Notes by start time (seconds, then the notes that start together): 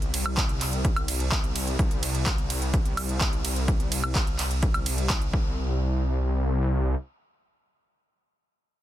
Already playing: C2
0.02 closed hi-hat
0.14 open hi-hat, ride
0.26 closed hi-hat, high woodblock
0.37 kick, clap, closed hi-hat
0.49 closed hi-hat
0.61 clap, open hi-hat, ride
0.73 closed hi-hat
0.85 kick, closed hi-hat
0.96 closed hi-hat, high woodblock
1.08 open hi-hat, ride
1.20 closed hi-hat
1.32 kick, clap, closed hi-hat
1.44 closed hi-hat
1.56 open hi-hat, ride
1.67 closed hi-hat
1.79 C2, kick, closed hi-hat
1.91 closed hi-hat
2.03 open hi-hat, ride
2.15 closed hi-hat
2.26 kick, clap, closed hi-hat
2.38 closed hi-hat
2.50 open hi-hat, ride
2.62 closed hi-hat
2.74 kick, closed hi-hat
2.85 closed hi-hat
2.97 open hi-hat, ride, high woodblock
3.09 closed hi-hat
3.21 kick, clap, closed hi-hat
3.33 closed hi-hat
3.45 open hi-hat, ride
3.56 closed hi-hat
3.68 kick, closed hi-hat
3.80 closed hi-hat
3.92 open hi-hat, ride
4.04 closed hi-hat, high woodblock
4.15 kick, clap, closed hi-hat
4.27 closed hi-hat
4.39 clap, open hi-hat, ride
4.51 closed hi-hat
4.63 kick, closed hi-hat
4.74 closed hi-hat, high woodblock
4.86 open hi-hat, ride
4.98 closed hi-hat
5.10 kick, clap, closed hi-hat
5.22 closed hi-hat
5.33 C2, kick